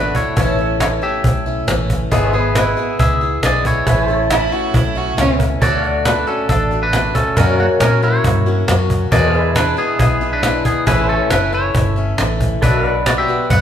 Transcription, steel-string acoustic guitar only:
Already playing: D3 A3 D4 F#4
0.36 A2 E3 A3 C#4 E4
0.59 A3 C#4 E4
0.80 E3 A3 C#4 E4
1.02 A3 C#4 E4
1.46 A3 C#4 E4
1.67 E3 A3 C#4 E4
2.11 G#3 B3 E4 G#4
2.33 B3 E4 G#4
2.55 G#3 B3 E4 G#4
2.77 B3 E4 G#4
3.21 B3 E4 G#4
3.43 G#3 B3 E4 G#4
3.87 A2 E3 A3 C#4 E4
4.08 A3 C#4 E4
4.30 E3 A3 C#4 E4
4.52 A3 C#4 E4
4.95 A3 C#4 E4
5.17 E3 A3 C#4 E4
5.62 D3 A3 D4 F#4
6.05 D3 A3 D4 F#4
6.27 A3 D4 F#4
6.71 A3 D4 F#4
6.93 D3 A3 D4 F#4
7.37 F#2 C#3 F#3 A#3 C#4 F#4
7.80 F#3 A#3 C#4 F#4
8.02 F#3 A#3 C#4 F#4
8.46 F#3 A#3 C#4 F#4
8.68 F#3 A#3 C#4 F#4
9.12 E2 B2 E3 G#3 D4 E4
9.55 E3 G#3 D4 E4
9.77 E3 G#3 D4 E4
10.21 E3 G#3 D4 E4
10.43 E3 G#3 D4 E4
10.86 A2 E3 A3 C#4 E4
11.30 E3 A3 C#4 E4
11.53 A3 C#4 E4
11.96 A3 C#4 E4
12.19 E3 A3 C#4 E4
12.63 B2 F#3 B3 D4 F#4
13.06 F#3 B3 D4 F#4
13.28 B3 D4 F#4

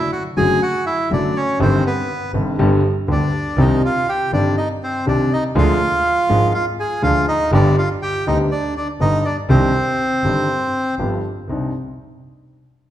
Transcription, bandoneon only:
Already playing: E4 E5
0.12 F#4 F#5
0.37 G#4 G#5
0.63 F#4 F#5
0.86 E4 E5
1.13 D4 D5
1.37 C#4 C#5
1.61 C4 C5
1.86 B3 B4
3.11 D4 D5
3.60 D#4 D#5
3.85 F4 F5
4.09 G4 G5
4.33 D4 D5
4.57 D#4 D#5
4.83 C4 C5
5.08 D4 D5
5.33 D#4 D#5
5.58 F4 F5
6.54 F4 F5
6.80 G#4 G#5
7.03 F4 F5
7.28 D#4 D#5
7.54 D4 D5
7.78 F4 F5
8.02 G4 G5
8.27 D#4 D#5
8.52 D4 D5
8.77 D4 D5
9.01 D#4 D#5
9.25 D4 D5
9.50 C4 C5

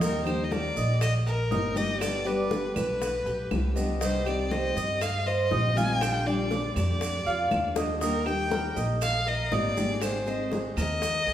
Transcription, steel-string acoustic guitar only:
0.01 D#3 G3 A#3 D#4 G4
0.26 G3 A#3 D#4 G4
0.50 G3 A#3 D#4 G4
1.01 muted steel-string acoustic guitar stroke
1.50 G3 A#3 D#4 G4
1.75 G3 A#3 D#4 G4
2.00 B2 D3 G3 B3 G4
2.25 D3 G3 B3 G4
2.51 D3 G3 B3 G4
3.01 muted steel-string acoustic guitar stroke
3.51 D3 G3 B3 G4
3.76 D3 G3 B3 G4
4.01 C3 D#3 G3 C4 G4
4.25 D#3 G3 C4 G4
4.50 D#3 G3 C4 G4
5.01 muted steel-string acoustic guitar stroke
5.50 D#3 G3 C4 G4
5.75 D#3 G3 C4 G4
6.00 D3 G3 D4 F4
6.25 G3 D4 F4
6.50 D3 G3 D4 F4
7.01 muted steel-string acoustic guitar stroke
7.51 D3 G3 D4 F4
7.75 G3 D4 F4
8.01 D#3 G3 A#3 D#4 G4
8.26 G3 A#3 D#4 G4
8.50 G3 A#3 D#4 G4
9.01 muted steel-string acoustic guitar stroke
9.51 G3 A#3 D#4 G4
9.76 G3 A#3 D#4 G4
10.01 D#3 G#3 C4 G#4
10.26 G#3 C4 G#4
10.51 D#3 G#3 C4 G#4
11.01 muted steel-string acoustic guitar stroke

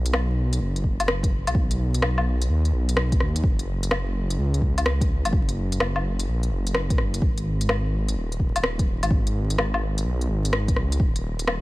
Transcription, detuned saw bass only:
Already playing: B1
0.61 F#1
1.00 F#1
1.47 B1
1.55 B1
2.49 D#2
2.73 B1
3.20 D#2
3.44 F#1
4.38 C#2
4.77 C#2
5.25 F#1
5.33 F#1
6.28 A#1
6.51 F#1
6.90 C#2
6.98 F#1
7.22 G#1
8.16 D#1
8.55 D#1
9.02 G#1
9.11 G#1
10.05 B1
10.29 G#1
10.76 C#2
11.00 D#1

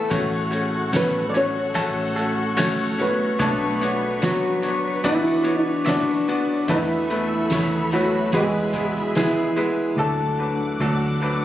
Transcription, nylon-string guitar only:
Already playing: A3 A4
0.55 G#4
0.95 B3 B4
1.30 D5
1.36 C#4 C#5
3.01 B3 B4
3.42 A3 A4
4.23 F#3 F#4
5.05 E3 E4
5.61 D4
5.88 D4 D5
6.69 E3 E4
7.93 F#3 F#4
8.34 G#3 G#4
8.90 F#4
9.17 E4
10.00 A4

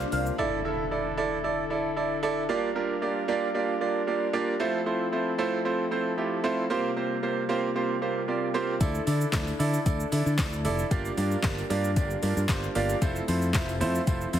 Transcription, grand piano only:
0.12 A#3 F4 G4 C5
0.38 E4 A4 D5
0.65 E4 A4 E5
0.91 E4 A4 D5
1.17 E4 A4 D5
1.44 E4 A4 D5
1.70 E4 A4 D5
1.96 E4 A4 D5
2.23 E4 A4 D5
2.49 A#3 D4 F4 G4 D5
2.75 A#3 D4 F4 G4 A#4
3.02 A#3 D4 F4 G4 D5
3.28 A#3 D4 F4 G4 D5
3.54 A#3 D4 F4 G4 D5
3.81 A#3 D4 F4 G4 D5
4.07 A#3 D4 F4 G4 D5
4.33 A#3 D4 F4 G4 D5
4.60 A3 C4 E4 F4 C5
4.86 A3 C4 E4 F4 C5
5.12 A3 C4 E4 F4 C5
5.38 A3 C4 E4 F4 C5
5.65 A3 C4 E4 F4 C5
5.91 A3 C4 E4 F4 C5
6.17 A3 C4 E4 F4 G4
6.44 A3 C4 E4 F4 C5
6.70 A#3 C4 F4 G4 C5
6.96 A#3 C4 F4 G4 C5
7.23 A#3 C4 F4 G4 C5
7.49 A#3 C4 F4 G4 C5
7.75 A#3 C4 F4 G4 C5
8.02 A#3 C4 F4 G4 C5
8.28 A#3 C4 F4 G4 D5
8.54 A#3 C4 F4 G4 C5
8.80 E4 A4 D5
9.07 E4 A4 D5
9.33 E4 A4 D5
9.59 E4 A4 D5
9.86 E4 A4 D5
10.12 E4 A4 D5
10.38 E4 A4 D5
10.65 E4 A4 D5
10.91 A#3 D4 F4 G4 D5
11.17 A#3 D4 F4 G4 D5
11.44 A#3 D4 F4 G4 D5
11.70 A#3 D4 F4 G4 D5
11.96 A#3 D4 F4 G4 D5
12.22 A#3 D4 F4 G4 D5
12.49 A#3 D4 F4 G4 C5
12.75 A#3 D4 F4 G4 D5
13.01 A3 C4 E4 F4 C5
13.28 A3 C4 E4 F4 C5
13.54 A3 C4 E4 F4 C5
13.80 A3 C4 E4 F4 C5
14.07 A3 C4 E4 F4 C5
14.33 A3 C4 E4 F4 C5

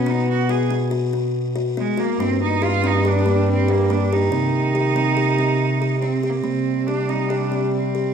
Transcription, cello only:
Already playing: C#4
0.09 D#4
0.30 F#4
0.50 G#4
1.79 G#3
1.99 A#3
2.19 C4
2.42 D#4
2.64 F4
2.86 D#4
3.08 D4
3.50 C4
3.72 A#3
3.92 D4
4.13 D#4
6.00 C4
6.24 C4
6.30 A#3
6.36 C4
6.87 D4
7.08 D#4
7.29 D4
7.73 C4

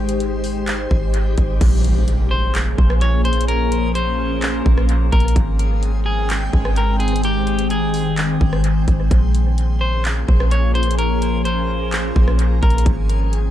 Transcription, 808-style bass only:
Already playing: G#1
0.91 G#1
1.38 G#1
1.61 A#1
2.78 A#1
4.66 A#1
5.13 A#1
5.36 G#1
6.53 G#1
8.41 G#1
8.88 G#1
9.11 A#1
10.28 A#1
12.16 A#1
12.63 A#1
12.86 G#1

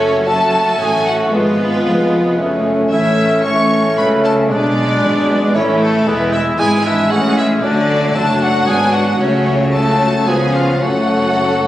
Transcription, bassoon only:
Already playing: A3
0.27 A3
1.33 G#3
2.39 A3
2.92 A3
3.45 A3
4.50 G#3
5.55 A3
6.07 G#3
6.59 G#3
7.11 G#3
7.64 F#3
8.16 F#3
8.68 F#3
9.21 F#3
9.74 F#3
10.27 F3
10.81 F#3

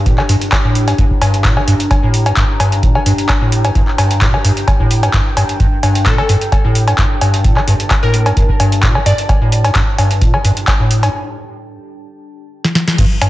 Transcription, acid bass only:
0.06 A#2
0.18 F3
0.29 G2
0.64 A2
0.88 G2
0.98 G2
1.21 G2
1.45 A#2
1.57 F3
1.68 G2
2.03 A2
2.26 G2
2.37 G2
2.60 G2
2.83 A#2
2.95 F3
3.06 G2
3.41 A2
3.65 G2
3.75 G2
3.98 G2
4.21 A#2
4.34 F3
4.45 G2
4.80 A2
5.03 G2
5.14 G2
5.37 G2
5.60 G2
5.83 G2
6.06 A#2
6.18 F3
6.29 G2
6.65 A2
6.88 G2
6.98 G2
7.21 G2
7.45 A#2
7.57 F3
7.68 G2
8.03 A2
8.26 G2
8.37 G2
8.60 G2
8.83 A#2
8.95 F3
9.06 G2
9.41 A2
9.65 G2
9.75 G2
9.98 G2
10.21 A#2
10.34 F3
10.45 G2
10.80 A2
11.03 G2
12.98 G2
13.22 G2

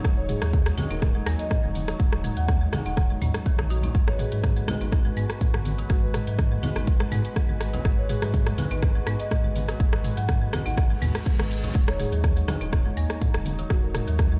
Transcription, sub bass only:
0.05 D#1
0.42 D#2
0.91 D#1
1.27 D#2
1.64 D#1
2.00 D#1
2.37 D#2
2.86 D#1
3.22 D#2
3.59 A#1
3.95 G#1
4.32 G#2
4.81 G#1
5.17 G#2
5.54 G#1
5.90 G#1
6.27 G#2
6.76 G#1
7.12 G#2
7.49 G#1
7.85 G#1
8.22 G#2
8.71 G#1
9.07 G#2
9.44 G#1
9.80 G#1
10.17 G#2
10.66 G#1
11.02 D#2
11.39 G#1
11.75 D#1
12.12 D#2
12.61 D#1
12.97 D#2
13.35 D#1
13.70 D#1
14.07 D#2

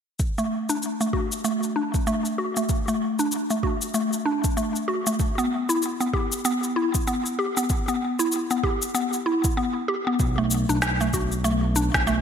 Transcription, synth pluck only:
0.38 A3
0.69 D4
1.01 A3
1.13 F#4
1.44 A3
1.76 D4
2.07 A3
2.38 F#4
2.57 A3
2.88 A3
3.19 D4
3.50 A3
3.63 F#4
3.94 A3
4.25 D4
4.57 A3
4.88 F#4
5.07 A3
5.38 B3
5.69 E4
6.00 B3
6.13 G4
6.45 B3
6.76 E4
7.07 B3
7.39 G4
7.57 B3
7.88 B3
8.19 E4
8.51 B3
8.64 G4
8.95 B3
9.26 E4
9.57 B3
9.88 G4
10.07 B3
10.38 A3
10.69 D4
11.01 A3
11.14 F#4
11.44 A3
11.76 D4
12.07 A3

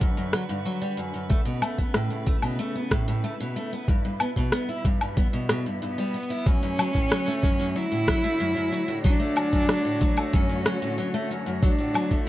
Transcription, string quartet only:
Already playing: D3 F#4 B4
1.30 C#3
1.43 A3
1.63 E4
3.88 B2
4.21 G3
6.46 D3
6.52 A3
6.84 C#5
6.99 F#4

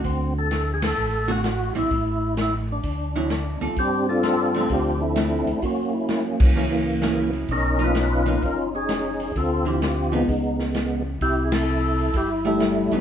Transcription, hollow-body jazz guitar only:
Already playing: D3 A3 C4 F#4
1.28 D3 A3 C4 F#4
1.75 G3 C4 E4
3.16 D3 F#3 C4 E4
3.61 G3 C4 F4 A4
4.55 F3 A3 C4
5.16 F3 A3 C4
6.56 F#3 A#3 E4 G#4
7.02 F#3 A#3 E4 G#4
7.79 F3 A#3 D#4
8.26 F3 A#3 D#4
9.65 D3 F3 C4 E4
10.12 F3 B3 D#4
12.45 G3 A3 E4
12.92 F#3 B3 D#4

